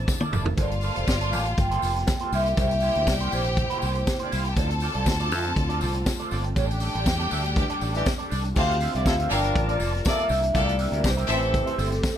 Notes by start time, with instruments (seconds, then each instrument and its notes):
Already playing: string section C3 A#3 D4 E4 A5
0.08 muted clean electric guitar stroke, kick, snare, tambourine
0.20 clean electric guitar A#3 E4 A4 D5, high tom
0.32 fingered electric bass F1, clean electric guitar A#3 E4 A4 D5, mid tom, tambourine
0.46 muted clean electric guitar stroke, floor tom
0.57 fingered electric bass G1, string section G3 A#3 F4, clean electric guitar A#3 F4 A4 C5, violin section F4 F5, kick, closed hi-hat, tambourine
0.61 vibraphone D5
0.71 muted clean electric guitar stroke, closed hi-hat
0.81 clean electric guitar A#3 F4 A4 C5, open hi-hat, tambourine
0.95 fingered electric bass F1, clean electric guitar A#3 F4 A4 C5, closed hi-hat
1.07 fingered electric bass G1, muted clean electric guitar stroke, kick, snare, tambourine
1.20 clean electric guitar A#3 F4 A4 C5, closed hi-hat
1.32 fingered electric bass A1, clean electric guitar A#3 F4 A4 D5, open hi-hat, tambourine
1.36 vibraphone F5
1.46 muted clean electric guitar stroke, closed hi-hat
1.58 fingered electric bass G1, vibraphone G5, muted clean electric guitar stroke, kick, closed hi-hat, tambourine
1.71 clean electric guitar A#3 F4 A4 C5, closed hi-hat
1.82 fingered electric bass F1, clean electric guitar A#3 F4 A4 C5, open hi-hat, tambourine
1.96 muted clean electric guitar stroke, snare, closed hi-hat
2.07 muted clean electric guitar stroke, kick, snare, tambourine
2.19 clean electric guitar A#3 F4 A4 C5, closed hi-hat
2.32 fingered electric bass C2, string section C3 E4, clean electric guitar A#3 E4 G4 C5, violin section G4 G5, vibraphone E5, open hi-hat, tambourine
2.46 muted clean electric guitar stroke, closed hi-hat
2.57 fingered electric bass C2, clean electric guitar A#3 E4 G4 C5, vibraphone E5, kick, closed hi-hat, tambourine
2.71 muted clean electric guitar stroke, closed hi-hat
2.80 clean electric guitar A#3 E4 G4 C5, open hi-hat, tambourine
2.95 fingered electric bass D2, clean electric guitar A#3 E4 G4 C5, closed hi-hat
3.07 fingered electric bass C2, vibraphone D5, kick, snare, tambourine
3.20 clean electric guitar A#3 E4 G4 C5, closed hi-hat
3.32 fingered electric bass A#1, clean electric guitar A#3 E4 G4 D5, vibraphone C5, open hi-hat, tambourine
3.44 muted clean electric guitar stroke, closed hi-hat
3.57 muted clean electric guitar stroke, kick, closed hi-hat
3.70 clean electric guitar A#3 E4 G4 C5, closed hi-hat
3.81 fingered electric bass C2, clean electric guitar A#3 E4 G4 C5, open hi-hat, tambourine
3.95 muted clean electric guitar stroke, closed hi-hat
4.07 muted clean electric guitar stroke, kick, snare, tambourine
4.19 clean electric guitar A#3 E4 G4 C5, closed hi-hat
4.24 violin section D4 D5
4.31 fingered electric bass C2, clean electric guitar A#3 E4 G4 C5, violin section E4 E5, open hi-hat, tambourine
4.40 violin section F4 F5
4.45 violin section G4 G5, muted clean electric guitar stroke, closed hi-hat
4.55 fingered electric bass D2, string section D3 A3 C4 F4, clean electric guitar C4 F4 A4 D5, violin section A4 A5, kick, closed hi-hat, tambourine
4.70 muted clean electric guitar stroke, closed hi-hat
4.80 clean electric guitar C4 F4 A4 D5, open hi-hat, tambourine
4.95 fingered electric bass C2, clean electric guitar C4 F4 A4 D5, closed hi-hat
5.06 fingered electric bass D2, muted clean electric guitar stroke, kick, snare, tambourine
5.20 clean electric guitar C4 F4 A4 D5, closed hi-hat
5.31 fingered electric bass F2, clean electric guitar C4 F4 A4 E5, open hi-hat, tambourine
5.44 muted clean electric guitar stroke, closed hi-hat
5.56 fingered electric bass D2, muted clean electric guitar stroke, kick, closed hi-hat
5.69 clean electric guitar C4 F4 A4 D5, closed hi-hat
5.81 fingered electric bass C2, clean electric guitar C4 F4 A4 D5, open hi-hat, tambourine
5.94 muted clean electric guitar stroke, closed hi-hat
6.06 muted clean electric guitar stroke, kick, snare, tambourine
6.19 clean electric guitar C4 F4 A4 D5, closed hi-hat
6.31 fingered electric bass G1, clean electric guitar C4 F4 A4 D5, open hi-hat, tambourine
6.44 muted clean electric guitar stroke, closed hi-hat
6.56 fingered electric bass A1, string section G3 D4, clean electric guitar D4 G4 A4 D5, violin section G4 G5, kick, closed hi-hat, tambourine
6.69 muted clean electric guitar stroke, closed hi-hat
6.80 clean electric guitar D4 G4 A4 D5, open hi-hat, tambourine
6.93 fingered electric bass A1, clean electric guitar D4 G4 A4 D5, closed hi-hat
7.05 fingered electric bass E2, muted clean electric guitar stroke, kick, snare, tambourine
7.19 clean electric guitar D4 G4 A4 D5, closed hi-hat
7.31 fingered electric bass D2, clean electric guitar D4 G4 A4 E5, open hi-hat, tambourine
7.44 muted clean electric guitar stroke, closed hi-hat
7.56 horn section E3 D4 G4, muted clean electric guitar stroke, kick, closed hi-hat, tambourine
7.70 clean electric guitar D4 G4 A4 D5, closed hi-hat
7.81 fingered electric bass A1, clean electric guitar D4 G4 A4 D5, open hi-hat, tambourine
7.93 horn section E3 D4 G4, muted clean electric guitar stroke, closed hi-hat
8.06 muted clean electric guitar stroke, kick, snare, tambourine
8.18 clean electric guitar D4 G4 A4 D5, closed hi-hat
8.30 fingered electric bass C2, clean electric guitar D4 G4 A4 D5, open hi-hat, tambourine
8.45 muted clean electric guitar stroke, closed hi-hat
8.55 fingered electric bass D2, string section D3 C4 D4 F4 G4, horn section A3 G4 C5, violin section C4 A4 F5, clean electric guitar F4 G4 C5 E5, vibraphone F5, kick, crash, tambourine
8.69 muted clean electric guitar stroke, closed hi-hat
8.80 clean electric guitar F4 G4 C5 E5, open hi-hat, tambourine
8.94 fingered electric bass C2, horn section A3 G4 D5, clean electric guitar F4 G4 C5 E5, closed hi-hat
9.05 fingered electric bass D2, horn section F3 E4 A4, muted clean electric guitar stroke, kick, snare, tambourine
9.18 clean electric guitar F4 G4 C5 E5, closed hi-hat
9.30 fingered electric bass G1, horn section F3 D4 A#4, string section G3 A#4 A5, clean electric guitar A#3 F4 A4 E5, violin section D4 A#4 F5, vibraphone G5, open hi-hat, tambourine
9.43 muted clean electric guitar stroke, closed hi-hat
9.55 fingered electric bass A1, vibraphone D5, muted clean electric guitar stroke, kick, closed hi-hat
9.68 clean electric guitar A#3 F4 A4 D5, closed hi-hat
9.79 fingered electric bass F1, clean electric guitar A#3 F4 A4 D5, open hi-hat, tambourine
9.94 muted clean electric guitar stroke, snare, closed hi-hat
10.05 horn section A#3 A4 D5, vibraphone E5, muted clean electric guitar stroke, kick, snare, tambourine
10.17 clean electric guitar A#3 F4 A4 D5, closed hi-hat
10.29 fingered electric bass C2, string section C3 A#3 D4 E4, clean electric guitar D4 G4 A#4 E5, open hi-hat, tambourine
10.43 muted clean electric guitar stroke, closed hi-hat
10.54 fingered electric bass C2, horn section A3 F4 A4, violin section A#3 G4 D5, clean electric guitar D4 G4 A#4 E5, vibraphone D5, kick, closed hi-hat, tambourine
10.67 muted clean electric guitar stroke, closed hi-hat
10.79 clean electric guitar D4 G4 A#4 E5, open hi-hat, tambourine
10.91 fingered electric bass D2, horn section G3 E4 A#4, clean electric guitar D4 G4 A#4 E5, closed hi-hat
11.03 fingered electric bass C2, horn section E3 D4 G4, vibraphone C5, muted clean electric guitar stroke, kick, snare, tambourine
11.17 clean electric guitar D4 G4 A#4 E5, closed hi-hat
11.28 fingered electric bass A1, horn section E3 C4 A4, string section A3 C4 G4, violin section C4 A4 E5, clean electric guitar E4 G4 C5 G5, vibraphone C5, open hi-hat, tambourine
11.41 muted clean electric guitar stroke, closed hi-hat
11.53 muted clean electric guitar stroke, kick, closed hi-hat, tambourine
11.66 clean electric guitar E4 G4 C5 E5, closed hi-hat
11.78 fingered electric bass G1, clean electric guitar E4 G4 C5 E5, vibraphone A4, open hi-hat, tambourine
11.91 muted clean electric guitar stroke, snare, closed hi-hat
12.03 muted clean electric guitar stroke, kick, snare, tambourine